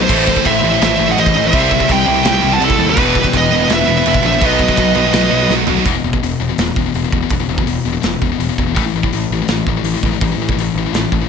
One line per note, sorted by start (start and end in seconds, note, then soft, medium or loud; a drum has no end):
0.00 0.42 A4 medium
0.00 0.48 C5 medium
0.06 0.36 A1 medium
0.06 0.97 A2 medium
0.06 0.25 A2 medium
0.06 0.99 E3 medium
0.06 0.26 E3 loud
0.06 0.97 A3 medium
0.06 0.26 A3 loud
0.06 0.96 C4 medium
0.06 kick loud
0.06 crash loud
0.06 china medium
0.11 0.96 E4 loud
0.27 0.36 A2 medium
0.27 0.35 E3 medium
0.27 kick medium
0.36 0.44 A2 medium
0.36 0.44 E3 medium
0.36 kick medium
0.45 0.59 A1 medium
0.45 0.61 A2 medium
0.45 0.61 E3 medium
0.45 0.80 C5 medium
0.45 0.82 E5 medium
0.45 kick loud
0.45 china medium
0.62 0.76 A1 loud
0.62 0.71 A2 medium
0.62 0.70 E3 medium
0.72 0.80 A2 medium
0.72 0.81 E3 medium
0.81 0.95 A1 loud
0.81 0.90 A2 medium
0.81 0.89 E3 medium
0.81 1.07 C5 medium
0.81 1.07 E5 loud
0.81 snare loud
0.81 china medium
0.91 0.98 A2 medium
0.91 0.98 E3 medium
0.97 1.13 A1 medium
0.97 1.07 A2 medium
0.97 1.14 A2 medium
0.97 1.07 E3 medium
0.97 1.16 E3 medium
0.97 1.16 A3 medium
0.97 1.15 C4 medium
0.97 1.18 E4 medium
1.08 1.17 A2 medium
1.08 1.17 E3 medium
1.08 1.18 D#5 medium
1.08 1.19 F#5 medium
1.15 1.31 A1 medium
1.15 1.51 A2 medium
1.15 1.34 A2 medium
1.15 1.52 E3 medium
1.15 1.34 E3 medium
1.15 1.52 A3 medium
1.15 1.53 C4 medium
1.15 1.55 E4 medium
1.15 1.43 C5 medium
1.15 china medium
1.20 1.46 D#5 medium
1.26 kick medium
1.36 1.49 A1 medium
1.36 1.45 A2 medium
1.36 1.44 E3 medium
1.45 1.54 A2 medium
1.45 1.54 E3 medium
1.45 1.87 C5 medium
1.45 1.88 E5 loud
1.51 1.81 C2 medium
1.51 2.41 C3 medium
1.51 1.71 C3 medium
1.51 2.42 E3 medium
1.51 2.42 G3 loud
1.51 1.71 G3 medium
1.51 2.41 C4 loud
1.51 kick loud
1.51 china medium
1.55 1.72 C4 loud
1.55 2.40 E4 loud
1.71 1.79 C3 medium
1.71 1.78 G3 medium
1.71 kick medium
1.79 1.87 C3 medium
1.79 1.88 G3 medium
1.79 kick medium
1.88 2.03 C2 loud
1.88 2.05 C3 medium
1.88 2.06 G3 loud
1.88 2.26 G5 loud
1.88 kick loud
1.88 china medium
1.93 2.25 E5 medium
2.06 2.21 C2 loud
2.06 2.15 C3 medium
2.06 2.14 G3 medium
2.15 2.23 C3 medium
2.15 2.23 G3 medium
2.24 2.39 C2 loud
2.24 2.31 C3 medium
2.24 2.32 G3 medium
2.24 2.52 E5 medium
2.24 2.53 G5 loud
2.24 snare loud
2.24 china medium
2.33 2.41 C3 medium
2.33 2.40 G3 medium
2.41 2.57 C2 loud
2.41 2.51 C3 medium
2.41 2.58 C3 medium
2.41 2.59 E3 medium
2.41 2.50 G3 medium
2.41 2.60 G3 medium
2.41 2.60 C4 medium
2.41 2.59 E4 medium
2.51 2.59 C3 medium
2.51 2.59 G3 medium
2.51 2.62 F#5 medium
2.51 2.62 A5 loud
2.59 2.74 C2 medium
2.59 2.95 C3 medium
2.59 2.77 C3 medium
2.59 2.95 E3 medium
2.59 2.77 G3 medium
2.59 2.97 G3 medium
2.59 2.97 C4 medium
2.59 china medium
2.63 2.97 E4 medium
2.63 2.88 E4 medium
2.63 2.88 A4 loud
2.70 kick loud
2.78 2.93 D#2 medium
2.78 2.86 C3 medium
2.78 2.87 G3 medium
2.87 2.97 C3 medium
2.87 2.97 G3 medium
2.87 3.36 B4 medium
2.92 3.86 E3 medium
2.92 3.32 G4 medium
2.97 3.25 E1 loud
2.97 3.15 E2 medium
2.97 3.15 B2 loud
2.97 3.15 E3 loud
2.97 3.87 G3 medium
2.97 3.87 B3 loud
2.97 3.85 E4 loud
2.97 kick loud
2.97 china medium
3.15 3.25 E2 medium
3.15 3.25 B2 medium
3.15 kick medium
3.24 3.33 E2 medium
3.24 3.33 B2 medium
3.24 kick medium
3.33 3.48 E1 medium
3.33 3.50 E2 medium
3.33 3.50 B2 medium
3.33 3.72 D#5 loud
3.33 kick medium
3.33 china medium
3.39 3.70 B4 medium
3.50 3.65 E1 medium
3.50 3.60 E2 medium
3.50 3.60 B2 medium
3.61 3.68 E2 medium
3.61 3.69 B2 medium
3.69 3.83 E1 loud
3.69 3.79 E2 medium
3.69 3.79 B2 loud
3.69 snare loud
3.69 china medium
3.73 4.22 B4 medium
3.73 4.25 E5 loud
3.81 3.88 E2 medium
3.81 3.88 B2 medium
3.86 4.01 E1 loud
3.86 3.98 E2 medium
3.86 3.97 B2 medium
3.86 4.04 G3 medium
3.86 4.06 B3 medium
3.86 4.04 E4 medium
3.90 4.03 E3 medium
3.99 4.05 E2 medium
3.99 4.07 B2 medium
4.04 4.19 E1 medium
4.04 4.22 E2 medium
4.04 4.23 B2 medium
4.04 4.40 E3 medium
4.04 4.41 G3 medium
4.04 4.42 B3 medium
4.04 china medium
4.08 4.42 E4 medium
4.14 kick medium
4.22 4.41 A#1 medium
4.22 4.33 E2 medium
4.22 4.33 B2 medium
4.22 4.43 C5 medium
4.26 4.46 E5 loud
4.34 4.42 E2 medium
4.34 4.41 B2 medium
4.39 4.69 B1 loud
4.39 5.30 B2 medium
4.39 4.59 B2 medium
4.39 5.30 D#3 loud
4.39 5.30 F#3 loud
4.39 4.59 F#3 loud
4.39 5.30 B3 loud
4.39 5.28 D#4 loud
4.39 5.51 B4 medium
4.39 kick loud
4.39 china medium
4.44 4.60 B3 loud
4.44 5.52 D#5 medium
4.59 4.69 B2 medium
4.59 4.68 F#3 medium
4.59 kick medium
4.68 4.78 B2 medium
4.68 4.78 F#3 medium
4.68 kick medium
4.77 4.91 B1 loud
4.77 4.95 B2 medium
4.77 4.95 F#3 loud
4.77 kick medium
4.77 china medium
4.95 5.09 B1 medium
4.95 5.05 B2 medium
4.95 5.05 F#3 medium
5.06 5.14 B2 medium
5.06 5.15 F#3 medium
5.13 5.27 B1 loud
5.13 5.24 B2 medium
5.13 5.24 F#3 loud
5.13 snare loud
5.13 china medium
5.21 5.30 B2 medium
5.21 5.30 F#3 medium
5.26 5.33 B2 medium
5.26 5.32 F#3 medium
5.26 5.48 D#4 medium
5.31 5.46 B1 medium
5.31 5.47 B2 medium
5.31 5.41 B2 medium
5.31 5.47 D#3 medium
5.31 5.49 F#3 medium
5.31 5.41 F#3 medium
5.31 5.48 B3 medium
5.42 5.51 B2 medium
5.42 5.50 F#3 medium
5.48 5.63 B1 medium
5.48 5.84 B2 medium
5.48 5.67 B2 medium
5.48 5.84 D#3 medium
5.48 5.85 F#3 medium
5.48 5.86 B3 medium
5.48 5.86 D#4 medium
5.48 snare medium
5.52 5.67 F#3 medium
5.67 5.82 B1 medium
5.67 5.78 B2 medium
5.67 5.78 F#3 medium
5.67 floor tom loud
5.79 5.85 B2 medium
5.79 5.86 F#3 medium
5.85 5.97 E1 medium
5.85 5.94 E2 medium
5.85 5.94 B2 medium
5.85 5.94 E3 medium
5.85 kick loud
5.85 open hi-hat medium
5.96 6.03 E2 medium
5.96 6.03 B2 medium
6.04 6.15 E1 medium
6.04 6.13 E2 medium
6.04 6.12 B2 medium
6.13 6.22 E2 medium
6.13 6.22 B2 medium
6.13 kick medium
6.22 6.33 E1 medium
6.22 6.39 E2 medium
6.22 6.39 B2 medium
6.22 open hi-hat medium
6.40 6.51 E1 medium
6.40 6.49 E2 medium
6.40 6.48 B2 medium
6.49 6.58 E2 medium
6.49 6.58 B2 medium
6.58 6.69 E1 medium
6.58 6.75 E2 medium
6.58 6.75 B2 medium
6.58 snare loud
6.58 open hi-hat medium
6.76 6.88 E1 medium
6.76 6.85 E2 medium
6.76 6.85 B2 medium
6.76 kick medium
6.86 6.94 E2 medium
6.86 6.94 B2 medium
6.94 7.06 E1 medium
6.94 7.04 E2 medium
6.94 7.03 B2 medium
6.94 open hi-hat soft
7.04 7.12 E2 medium
7.04 7.12 B2 medium
7.12 7.24 E1 medium
7.12 7.21 E2 medium
7.12 7.21 B2 medium
7.12 kick medium
7.23 7.31 E2 medium
7.23 7.31 B2 medium
7.30 7.42 E1 medium
7.30 7.39 E2 medium
7.30 7.39 B2 medium
7.30 kick loud
7.30 open hi-hat medium
7.40 7.49 E2 medium
7.40 7.48 B2 medium
7.48 7.59 E1 medium
7.48 7.58 E2 medium
7.48 7.57 B2 medium
7.58 7.66 E2 medium
7.58 7.66 B2 medium
7.58 kick medium
7.66 7.78 E1 medium
7.66 7.83 E2 medium
7.66 7.83 B2 medium
7.66 open hi-hat medium
7.85 7.96 E1 medium
7.85 7.91 E2 medium
7.85 7.92 B2 medium
7.93 8.00 E2 medium
7.93 8.01 B2 medium
8.01 8.15 E1 medium
8.01 8.19 E2 medium
8.01 8.19 B2 medium
8.01 snare loud
8.01 open hi-hat medium
8.21 8.33 E1 medium
8.21 8.31 E2 medium
8.21 8.31 B2 medium
8.21 kick medium
8.32 8.39 E2 medium
8.32 8.39 B2 medium
8.39 8.51 E1 medium
8.39 8.48 E2 medium
8.39 8.48 B2 medium
8.39 open hi-hat medium
8.49 8.58 E2 medium
8.49 8.58 B2 medium
8.58 8.76 E1 medium
8.58 8.66 E2 medium
8.58 8.66 B2 medium
8.58 kick medium
8.67 8.76 E2 medium
8.67 8.74 B2 medium
8.74 8.87 A1 medium
8.74 8.83 A2 medium
8.74 8.84 E3 medium
8.74 8.84 A3 loud
8.74 kick loud
8.74 open hi-hat medium
8.85 8.94 A2 medium
8.85 8.94 E3 medium
8.94 9.05 A1 medium
8.94 9.02 A2 medium
8.94 9.02 E3 medium
9.03 9.12 A2 medium
9.03 9.12 E3 medium
9.03 kick medium
9.13 9.24 A1 medium
9.13 9.29 A2 medium
9.13 9.29 E3 medium
9.13 open hi-hat medium
9.30 9.42 A1 medium
9.30 9.40 A2 medium
9.30 9.41 E3 medium
9.42 9.50 A2 medium
9.42 9.49 E3 medium
9.48 9.60 A1 medium
9.48 9.66 A2 medium
9.48 9.66 E3 medium
9.48 snare loud
9.48 open hi-hat medium
9.67 9.78 A1 medium
9.67 9.76 A2 medium
9.67 9.76 E3 medium
9.67 kick medium
9.77 9.84 A2 medium
9.77 9.85 E3 medium
9.83 9.95 A1 medium
9.83 9.94 A2 medium
9.83 9.93 E3 medium
9.83 open hi-hat medium
9.95 10.04 A2 medium
9.95 10.03 E3 medium
10.03 10.14 A1 medium
10.03 10.12 A2 medium
10.03 10.11 E3 medium
10.03 kick medium
10.12 10.20 A2 medium
10.12 10.21 E3 medium
10.21 10.33 A1 medium
10.21 10.31 A2 medium
10.21 10.30 E3 medium
10.21 kick loud
10.21 open hi-hat medium
10.31 10.41 A2 medium
10.31 10.40 E3 medium
10.37 10.49 A1 medium
10.42 10.50 A2 medium
10.42 10.50 E3 medium
10.49 10.59 A2 medium
10.49 10.59 E3 medium
10.49 kick medium
10.56 10.68 A1 medium
10.56 10.75 A2 medium
10.56 open hi-hat medium
10.61 10.76 E3 medium
10.74 10.86 A1 medium
10.74 10.85 A2 medium
10.74 10.85 E3 medium
10.86 10.92 A2 medium
10.86 10.93 E3 medium
10.93 11.05 A1 medium
10.93 11.10 A2 medium
10.93 11.10 E3 medium
10.93 snare loud
10.93 open hi-hat medium
11.12 11.23 A1 medium
11.12 11.20 A2 medium
11.12 11.20 E3 medium
11.12 kick medium
11.22 11.28 A2 medium
11.22 11.29 E3 medium